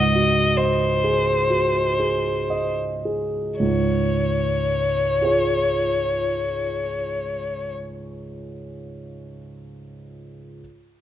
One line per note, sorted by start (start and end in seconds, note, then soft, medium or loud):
0.00 3.56 C#2 soft
0.00 0.40 G#2 soft
0.00 0.58 D#5 medium
0.15 0.84 F#4 soft
0.56 2.77 C5 medium
0.56 1.30 D#5 soft
1.04 1.79 G#4 soft
1.50 2.29 F#4 soft
2.00 2.84 G#4 soft
2.50 3.38 D#5 soft
3.05 3.59 G#4 soft
3.59 7.73 C#2 soft
3.59 7.73 G#2 soft
3.59 7.73 C#5 soft
5.21 9.35 F4 soft
5.21 9.36 G#4 soft
5.21 9.38 C#5 soft